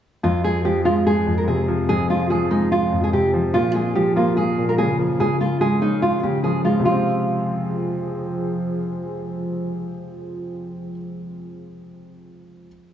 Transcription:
0.23 F2 F3 C4 F4 G#4
0.44 G#4
0.65 F3 G4
0.85 G#3 F4
1.07 G#4
1.27 F2
1.38 A#4
1.47 C3 G#4
1.68 F3
1.89 F2 G#4
2.10 F4
2.30 F3 G#4
2.51 G#3 D#4
2.72 F4
2.92 F2
3.04 G#4
3.13 C3 G4
3.34 F3
3.54 A#2 C#4 F4 A#4
3.75 G#4
3.95 F3 G4
4.16 A#3 F4
4.37 G#4
4.58 A#2
4.69 A#4
4.78 C#3 G#4
4.99 F3
5.20 C#3 F4 G#4
5.41 F4
5.61 G#3 G#4
5.82 C#4 D#4
6.02 F4
6.23 C#3 G4
6.44 F3 G#4
6.65 G#3 F4
6.80 C3 F3
6.85 F3 G#3 F4 G#4 C5
6.92 C4

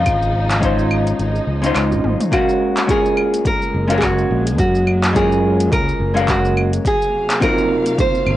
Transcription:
Already playing: C#3 F3 G#3 C#4 D#4 F4 C5 D#5
0.06 G#1, kick, closed hi-hat, claves, shaker
0.22 shaker
0.51 clap, closed hi-hat, shaker
0.60 G#3 C#4 D#4 F4, kick, closed hi-hat, shaker
0.65 C5
0.79 shaker
0.91 claves
1.07 closed hi-hat, shaker
1.19 G#1, closed hi-hat, shaker
1.36 shaker
1.47 C#2
1.62 G#3 C#4 D#4 F4, closed hi-hat, shaker
1.66 C5
1.75 C#2, clap, closed hi-hat, claves, shaker
1.92 G#1, high tom, shaker
2.04 G#1, mid tom
2.21 closed hi-hat, mid tom, shaker
2.32 G#3 A#3 C#4 F#4 A#4 F5, kick, closed hi-hat, claves, shaker
2.49 shaker
2.77 clap, closed hi-hat, shaker
2.87 G#3 C#4 F4 F#4 G#4, kick, closed hi-hat, shaker
2.91 A#4
3.05 shaker
3.17 claves
3.34 closed hi-hat, shaker
3.45 A#4, kick, closed hi-hat, shaker
3.62 shaker
3.74 F#1
3.87 G#3 C#4 F#4 F5, closed hi-hat, shaker
3.92 A#4
3.98 G#4
4.02 F#4, kick, clap, closed hi-hat, claves, shaker
4.18 shaker
4.31 A#1
4.47 closed hi-hat, shaker
4.58 F#2 F#4, kick, closed hi-hat, shaker
4.75 shaker
4.87 claves
5.04 clap, closed hi-hat, shaker
5.13 G#3 C#4 F4 F#4 G#4, kick, closed hi-hat, shaker
5.17 A#4
5.32 shaker
5.60 closed hi-hat, shaker
5.72 C#2 A#4, kick, closed hi-hat, claves, shaker
5.89 shaker
6.00 F#1
6.14 G#3 C#4 F#4 F5, closed hi-hat, shaker
6.19 A#4
6.28 F#4, kick, clap, closed hi-hat, shaker
6.45 shaker
6.57 claves
6.73 closed hi-hat, shaker
6.85 C3 F#3 A#3 G#4 F5, kick, closed hi-hat, shaker
7.02 shaker
7.30 clap, closed hi-hat, shaker
7.40 C4 D#4 F4 F#4 A#4, kick, closed hi-hat, claves, shaker
7.45 A#4
7.58 shaker
7.86 closed hi-hat, shaker
7.98 C5, kick, closed hi-hat, shaker
8.15 shaker
8.26 G#1, claves

